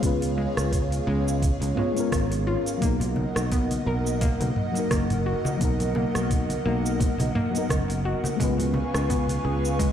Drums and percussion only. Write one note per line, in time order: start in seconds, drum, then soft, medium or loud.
0.03 kick loud
0.03 open hi-hat medium
0.03 cabasa medium
0.22 open hi-hat soft
0.22 cabasa soft
0.57 cross-stick medium
0.57 open hi-hat soft
0.57 cabasa medium
0.72 kick loud
0.72 open hi-hat medium
0.72 cabasa medium
0.92 open hi-hat soft
0.92 cabasa soft
1.28 cabasa medium
1.42 kick loud
1.42 open hi-hat medium
1.42 cabasa medium
1.62 open hi-hat soft
1.62 cabasa soft
1.77 mid tom medium
1.97 open hi-hat soft
1.97 cabasa medium
2.12 kick loud
2.12 cross-stick medium
2.12 open hi-hat medium
2.12 cabasa medium
2.32 open hi-hat soft
2.32 cabasa soft
2.66 open hi-hat soft
2.66 cabasa medium
2.82 kick loud
2.82 open hi-hat medium
2.82 cabasa medium
3.00 open hi-hat soft
3.00 low conga medium
3.00 cabasa soft
3.16 high conga medium
3.36 cross-stick medium
3.36 open hi-hat soft
3.36 cabasa medium
3.52 kick loud
3.52 open hi-hat medium
3.52 cabasa medium
3.71 open hi-hat soft
3.71 high conga medium
3.71 cabasa soft
4.07 cabasa medium
4.21 kick loud
4.21 open hi-hat medium
4.21 low conga medium
4.21 cabasa medium
4.41 open hi-hat soft
4.41 high conga medium
4.41 cabasa soft
4.56 mid tom medium
4.75 open hi-hat soft
4.75 cabasa medium
4.91 kick loud
4.91 cross-stick medium
4.91 open hi-hat medium
4.91 high conga medium
4.91 cabasa medium
5.10 mid tom medium
5.10 open hi-hat soft
5.10 cabasa soft
5.45 high conga loud
5.45 cabasa medium
5.61 kick loud
5.61 open hi-hat medium
5.61 cabasa medium
5.80 open hi-hat soft
5.80 low conga medium
5.80 cabasa soft
5.95 high conga medium
6.15 cross-stick medium
6.15 open hi-hat soft
6.15 cabasa medium
6.31 kick loud
6.31 open hi-hat medium
6.31 cabasa medium
6.50 open hi-hat soft
6.50 high conga medium
6.50 cabasa soft
6.86 cabasa medium
7.00 kick loud
7.00 open hi-hat medium
7.00 low conga medium
7.00 cabasa medium
7.20 open hi-hat soft
7.20 high conga medium
7.20 cabasa soft
7.36 mid tom medium
7.55 open hi-hat soft
7.55 cabasa medium
7.69 kick loud
7.69 cross-stick medium
7.69 open hi-hat medium
7.69 high conga medium
7.69 cabasa medium
7.90 open hi-hat soft
7.90 cabasa soft
8.24 open hi-hat soft
8.24 high conga loud
8.24 cabasa medium
8.40 kick loud
8.40 open hi-hat medium
8.40 cabasa medium
8.59 open hi-hat soft
8.59 low conga medium
8.59 cabasa soft
8.74 high conga medium
8.95 cross-stick medium
8.95 open hi-hat soft
8.95 cabasa medium
9.10 kick loud
9.10 open hi-hat medium
9.10 cabasa medium
9.29 open hi-hat soft
9.29 high conga medium
9.29 cabasa soft
9.65 cabasa medium
9.79 kick loud
9.79 open hi-hat medium
9.79 low conga medium
9.79 cabasa medium